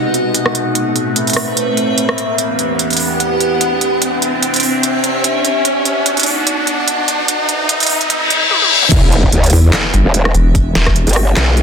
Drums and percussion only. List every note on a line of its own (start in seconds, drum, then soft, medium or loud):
0.14 closed hi-hat medium
0.34 closed hi-hat medium
0.46 cross-stick medium
0.55 closed hi-hat medium
0.75 closed hi-hat medium
0.96 closed hi-hat medium
1.16 closed hi-hat medium
1.27 closed hi-hat soft
1.30 closed hi-hat medium
1.33 cross-stick medium
1.33 closed hi-hat medium
1.57 closed hi-hat medium
1.77 closed hi-hat soft
1.98 closed hi-hat medium
2.09 cross-stick medium
2.18 closed hi-hat soft
2.38 closed hi-hat medium
2.59 closed hi-hat medium
2.79 closed hi-hat medium
2.90 closed hi-hat soft
2.93 closed hi-hat medium
2.97 closed hi-hat medium
2.97 open hi-hat medium
3.20 closed hi-hat medium
3.40 closed hi-hat soft
3.61 closed hi-hat medium
3.81 closed hi-hat medium
4.02 closed hi-hat medium
4.22 closed hi-hat medium
4.43 closed hi-hat medium
4.54 closed hi-hat soft
4.56 closed hi-hat medium
4.60 closed hi-hat medium
4.60 open hi-hat loud
4.83 closed hi-hat medium
5.04 closed hi-hat medium
5.24 closed hi-hat medium
5.45 closed hi-hat medium
5.65 closed hi-hat medium
5.85 closed hi-hat medium
6.06 closed hi-hat medium
6.17 closed hi-hat medium
6.19 closed hi-hat medium
6.23 closed hi-hat medium
6.23 open hi-hat loud
6.47 closed hi-hat medium
6.67 closed hi-hat medium
6.88 closed hi-hat medium
7.08 closed hi-hat medium
7.28 closed hi-hat medium
7.49 closed hi-hat medium
7.69 closed hi-hat medium
7.80 closed hi-hat medium
7.83 closed hi-hat medium
7.86 closed hi-hat medium
7.86 open hi-hat loud
8.01 closed hi-hat soft
8.10 closed hi-hat medium
8.30 closed hi-hat medium
8.51 high tom medium
8.62 high tom medium
8.82 mid tom medium
8.92 kick loud
8.92 closed hi-hat medium
8.92 crash loud
9.12 closed hi-hat medium
9.23 kick medium
9.32 closed hi-hat medium
9.44 closed hi-hat medium
9.46 closed hi-hat medium
9.50 closed hi-hat medium
9.50 open hi-hat loud
9.73 snare loud
9.73 clap medium
9.73 closed hi-hat medium
9.94 closed hi-hat medium
10.14 closed hi-hat medium
10.25 cross-stick medium
10.34 closed hi-hat medium
10.55 kick loud
10.55 closed hi-hat medium
10.75 snare medium
10.75 closed hi-hat medium
10.86 kick medium
10.86 cross-stick medium
10.96 closed hi-hat medium
11.07 closed hi-hat soft
11.09 closed hi-hat medium
11.13 cross-stick medium
11.13 closed hi-hat medium
11.37 snare loud
11.37 clap medium
11.37 closed hi-hat medium
11.57 closed hi-hat medium